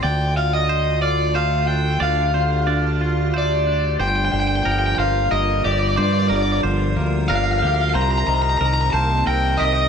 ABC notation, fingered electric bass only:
X:1
M:3/4
L:1/8
Q:1/4=91
K:Gm
V:1 name="Fingered electric bass" clef=bass
D,,6 | D,,6 | G,,, G,,, G,,, G,,, G,,, G,,, | G,, G,,, G,,, D,, G,,, D,, |
C,, C,, C,, C,, C,, C,, |]